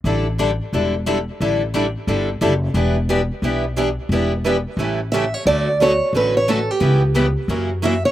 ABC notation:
X:1
M:4/4
L:1/16
Q:"Swing" 1/4=178
K:Amix
V:1 name="Steel-string acoustic guitar"
z16 | z16 | z16 | z12 e2 c2 |
d4 c4 B2 c2 A2 G2- | G2 z8 z2 e2 c2 |]
V:2 name="Steel-string acoustic guitar"
[D,G,DEA]2 z2 [D,G,DEA] z3 [D,G,DEA]2 z2 [D,G,DEA] z3 | [D,G,DEA]2 z2 [D,G,DEA] z3 [D,G,DEA]2 z2 [D,G,DEA] z3 | [E,G,DEB]2 z2 [E,G,DEB] z3 [E,G,DEB]2 z2 [E,G,DEB] z3 | [E,G,DEB]2 z2 [E,G,DEB] z3 [E,G,CEA]2 z2 [E,G,CEA] z3 |
[D,A,CFA]2 z2 [D,A,CFA] z3 [D,A,CFA]2 z2 [D,A,CFA] z3 | [C,G,B,EB]2 z2 [C,G,B,EB] z3 [F,CE^A]2 z2 [F,CEA] z3 |]
V:3 name="Steel-string acoustic guitar"
[D,G,DEA]2 z2 [D,G,DEA] z3 [D,G,DEA]2 z2 [D,G,DEA] z3 | [D,G,DEA]2 z2 [D,G,DEA] z3 [D,G,DEA]2 z2 [D,G,DEA] z3 | [E,B,DG]2 z2 [E,B,DG] z3 [E,B,DG]2 z2 [E,B,DG] z3 | [E,B,DG]2 z2 [E,B,DG] z3 [C,E,A,CG]2 z2 [C,E,A,CG] z3 |
[D,F,A,CF]2 z2 [D,F,A,CF] z3 [D,F,A,CF]2 z2 [D,F,A,CF] z3 | [C,E,B,CG]2 z2 [C,E,B,CG] z3 [C,E,^A,CF]2 z2 [C,E,A,CF] z3 |]
V:4 name="Upright bass" clef=bass
A,,,8 E,,,8 | A,,,8 G,,,4 F,,,4 | E,,,8 B,,,8 | E,,,8 A,,,8 |
D,,8 A,,,8 | C,,8 F,,8 |]